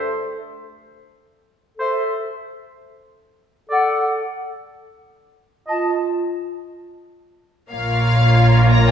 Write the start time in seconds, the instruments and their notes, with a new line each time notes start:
Already playing: clarinet A4, flute section E5
1.77 clarinet A4, oboe C5, flute section E5
3.70 clarinet A4, oboe D5, flute section F#5
5.67 clarinet F4, oboe D#5, flute section A5
7.71 double bass section A#1, cello section A#2, viola section A#3 F4, violin section A#4 C#5 F5
8.70 violin section A#5
8.88 violin section G5